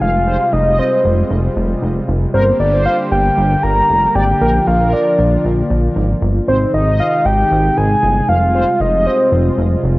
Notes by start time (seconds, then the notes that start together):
Already playing: C3 G#3
0.01 F1 G3 F4 F5
0.27 C5
0.53 F1 D#5
0.66 D#5
0.79 C5
1.05 F1
1.31 F1
1.56 F1
1.82 F1
2.08 F1
2.34 G1 D3 G3 A#3 G4 A#4 C5
2.60 G1 D5
2.73 C5
2.86 F5
3.12 G1 G5
3.37 G1
3.63 G1 A#5
3.89 F1
4.15 G#1 D5 G5
4.41 A#1 F3 F4 A#4
4.67 A#1 F5
4.80 A#4
4.93 D5
5.19 A#1
5.45 A#1
5.70 A#1
5.96 G#1
6.22 G1
6.48 G#1 C3 D#3 G#3 D#4 C5
6.74 G#1 D#5
6.87 D#5
7.00 F5
7.25 G#1 G5
7.51 G#1
7.77 G#1 G#5
8.03 G1
8.29 F1 G3 F4 F5
8.55 C5
8.80 F1 D#5
8.93 D#5
9.07 C5
9.32 F1
9.58 F1
9.84 F1